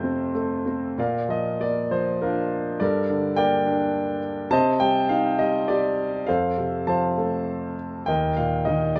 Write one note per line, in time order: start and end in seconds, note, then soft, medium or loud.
0.00 0.94 F2 medium
0.00 0.63 C3 soft
0.00 0.33 A3 soft
0.00 0.64 C4 soft
0.00 0.31 F4 soft
0.00 0.31 A4 soft
0.00 0.31 C5 medium
0.35 0.96 A3 soft
0.66 0.97 C4 soft
0.98 2.77 A#2 soft
0.98 1.88 A#4 soft
0.98 1.59 D5 soft
0.98 1.28 F5 medium
1.29 1.90 F3 soft
1.29 1.62 D#5 medium
1.60 2.77 A#3 soft
1.60 1.92 D5 medium
1.91 2.78 F3 soft
1.91 2.23 C5 medium
2.22 2.77 D4 soft
2.22 2.77 F4 soft
2.22 2.80 A#4 medium
2.80 4.48 G2 medium
2.80 3.63 A4 soft
2.80 3.37 A#4 soft
2.80 3.36 D5 medium
3.10 4.20 D3 soft
3.36 4.49 A#3 soft
3.36 4.19 A#4 medium
3.36 4.19 D5 medium
3.36 4.19 G5 medium
3.66 4.49 D4 soft
4.51 6.24 C3 medium
4.51 5.36 C5 medium
4.51 5.36 D#5 medium
4.51 4.81 A5 medium
4.80 5.38 G3 soft
4.80 5.08 G5 medium
5.09 6.25 D#4 soft
5.09 5.40 F5 medium
5.39 6.26 G3 soft
5.39 5.70 D#5 medium
5.68 6.25 G4 soft
5.68 6.30 D5 medium
6.27 8.04 F2 medium
6.27 7.14 A4 soft
6.27 6.87 C5 soft
6.27 6.88 F5 medium
6.57 7.74 C3 soft
6.87 8.05 F3 soft
6.87 7.75 C5 soft
6.87 7.75 F5 soft
6.87 7.74 A5 medium
7.18 8.06 A3 soft
8.06 9.00 D#2 soft
8.06 8.94 A#4 soft
8.06 8.64 D#5 soft
8.06 8.38 G5 medium
8.37 9.00 A#2 soft
8.37 8.68 F5 medium
8.65 9.00 D#3 soft
8.65 8.94 D#5 medium
8.96 9.00 G3 soft
8.96 9.00 D5 medium